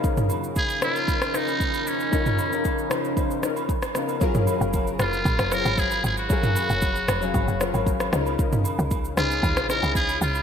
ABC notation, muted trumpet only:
X:1
M:4/4
L:1/16
Q:1/4=115
K:Gblyd
V:1 name="Muted trumpet"
z4 A2 F4 E4 D2- | D6 z8 z2 | z6 F4 B2 A2 A G- | G8- G3 z4 z |
z6 F4 B2 A2 F2 |]